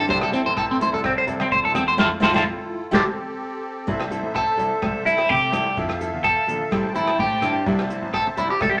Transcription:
Already playing: C4 A4
0.08 C2 G3 C4 E4 A4 C5, kick, muted conga
0.21 A4, cross-stick, low agogo
0.32 C4 E4 A4, closed hi-hat
0.46 A1 C5
0.57 A4, kick, cross-stick, low agogo
0.71 C4
0.81 C4 E4 A4 C5, closed hi-hat, muted conga, high conga
0.92 C2 A4
1.04 C4, kick, cross-stick, muted conga, low agogo
1.18 C5
1.27 C2 C4 E4 A4, closed hi-hat, muted conga
1.40 C4, cross-stick, low agogo
1.52 C5, kick, high conga
1.64 C2 A4
1.73 E2 C4 A4, cross-stick, closed hi-hat, high conga, low agogo
1.88 C5
1.97 F2 C4 E4 F4 A4 C5, kick, snare, high conga, low agogo
2.20 F2 C4 E4 F4 A4 C5, kick, snare, high conga, low agogo
2.24 F4
2.33 F2 C4 E4 F4 A4 C5, kick, snare, high conga, low agogo
2.91 A1 C4 E4 G4 A4, kick, snare, high conga, low agogo
2.95 C5
3.87 C2 C4 E4 A4 C5 E5, muted nylon-string guitar stroke, kick, muted conga
4.00 cross-stick, low agogo
4.11 C4 E4 A4, closed hi-hat, muted conga
4.23 A1
4.35 A4, kick, cross-stick, low agogo
4.57 C2 C4 E4 A4, closed hi-hat, muted conga
4.82 C2, kick, cross-stick, muted conga, high conga, low agogo
5.05 C4 E4 A4, closed hi-hat
5.17 cross-stick, low agogo
5.29 C3 G4, kick, high conga
5.52 C2 C4 E4 A4, cross-stick, closed hi-hat, high conga, low agogo
5.77 F2 C4 E4 A4 F5, kick, muted conga
5.89 cross-stick, low agogo
6.00 E4 A4, closed hi-hat, muted conga
6.13 E2
6.24 A4, kick, cross-stick, low agogo
6.47 A#1 A4, muted nylon-string guitar stroke, closed hi-hat, muted conga, low conga
6.71 A1 G3 C4 E4 A4 C5 G5 A5, kick, cross-stick, muted conga, low agogo
6.95 C4 E4 A4, closed hi-hat, low conga
7.08 cross-stick, low agogo
7.19 A2 G4, kick, high conga
7.41 G2 C4 E4 A4, cross-stick, closed hi-hat, low agogo
7.66 C2 G3 C4 E4 A4 C5 E5, kick
7.79 cross-stick, low agogo
7.90 C4 E4, closed hi-hat, muted conga
8.02 A1
8.14 A4, kick, cross-stick, low agogo
8.27 muted clean electric guitar stroke
8.37 C2 C4 E4 A4, closed hi-hat, muted conga
8.50 G4
8.61 C2 A4, kick, cross-stick, muted conga, high conga, low agogo
8.70 G4

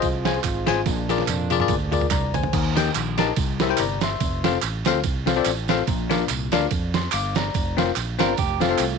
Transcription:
Already playing: F3 G#3 C4 F4
0.02 C2, kick, ride, tambourine
0.25 F4 G#4 C5 G#5, snare, ride, tambourine
0.43 G#1, kick, clap, ride, tambourine
0.67 G#1 F4 G#4 C5 G#5, snare, ride, tambourine
0.86 A#1 A#2 F3 A#3 D4, kick, snare, ride, tambourine
1.09 F4 G#4 A#4 D5, snare, ride, tambourine
1.18 snare
1.27 F2, clap, high tom, ride, tambourine
1.50 F4 G#4 A#4 D5, high tom, ride, tambourine
1.60 F4 G#4 A#4 D5, mid tom
1.68 D2, kick, mid tom, ride, tambourine
1.92 F4 G#4 A#4 D5, mid tom, ride, tambourine
2.01 mid tom
2.10 C2 D5 A#5, kick, clap, mid tom, ride, tambourine
2.34 D2 C5 G#5, floor tom, ride, tambourine
2.43 floor tom
2.53 D#2 D#3, kick, crash, ride, tambourine
2.76 D#4 G4 A#4 D#5 G5, snare, ride, tambourine
2.95 A#1, clap, ride, tambourine
3.18 D#4 G4 A#4 D#5 A5, snare, ride, tambourine
3.36 C2 C3, kick, ride, tambourine
3.59 E4 G4 A#4 C5 E5, snare, ride, tambourine
3.69 E4 G4 A#4 C5 G5
3.77 G1 D5 A#5, clap, ride, tambourine
4.01 E5 C6, snare, ride, tambourine
4.20 F1, kick, ride, tambourine
4.44 C4 F4 A4 C5 F5, snare, ride, tambourine
4.62 A1, clap, ride, tambourine
4.85 D2 C4 F4 A4 C5 F5, snare, ride, tambourine
5.04 C2, kick, ride, tambourine
5.26 C4 F4 A4 C5 F5, snare, ride, tambourine
5.36 C4 F4 A4 C5 D5
5.45 A1, clap, ride, tambourine
5.68 C4 F4 A4 C5 F5, snare, ride, tambourine
5.87 A#1 A#2, kick, ride, tambourine
6.10 D4 F4 A#4 D5 F5, snare, ride, tambourine
6.29 C2, clap, ride, tambourine
6.52 D2 D4 F4 A#4 D5 F5, snare, ride, tambourine
6.71 F2, kick, ride, tambourine
6.94 C6, snare, ride, tambourine
7.12 G1 F5 D6, clap, ride, tambourine
7.35 D5 A#5, snare, ride, tambourine
7.54 F1, kick, ride, tambourine
7.77 C4 F4 A#4 C5 F5, snare, ride, tambourine
7.96 A#1, clap, ride, tambourine
8.19 G1 C4 D4 F4 A#4 C5 F5, snare, ride, tambourine
8.37 F1 G4, kick, ride, tambourine
8.60 A3 C4 F4 A4 C5 F5, snare, ride, tambourine
8.69 C4 F4 A4 C5 F5
8.78 C2, clap, ride, tambourine

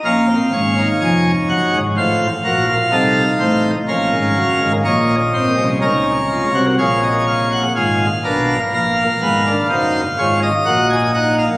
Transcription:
0.05 A#1 A#2 C#4 A#4 F5
0.29 C4
0.53 G#1 G#2 C#4 C#5
0.78 D#4
1.01 F1 F2 G#5
1.49 F#1 F#2 F#5
1.74 G#1 G#2
1.97 A1 A2 F4 C5 F5
2.45 A#1 A#2 F#4 A#4
2.69 F4
2.92 C2 C3 D#4 A4
3.40 A1 A2 C5
3.88 A#1 A#2 C#4 A#4 F5
4.13 G#1 G#2
4.36 F#1 F#2
4.61 G#1 G#2
4.85 A#1 A#2 A#3 C#5 D#5
5.34 C4 C5
5.57 C2 C3 C#4
5.82 C#2 C#3 D#4 A#4 C#5
6.30 F4
6.55 C2 C3 F#4
6.79 A#1 A#2 G#4 C#5 F5
7.03 D#5
7.27 F5
7.52 F#5
7.76 G#1 G#2 F4 G#4 F5
8.24 B1 B2 D4 A#4
8.73 A#1 A#2 A#3 F5
9.22 G#1 G#2 B3
9.46 D4
9.70 F#1 F#2 D#4 C5
10.19 G#1 G#2 F4 C#5
10.43 D#5
10.66 A#1 A#2 F#4 F#5
10.90 G#5
11.14 D#4 F#5
11.39 F5

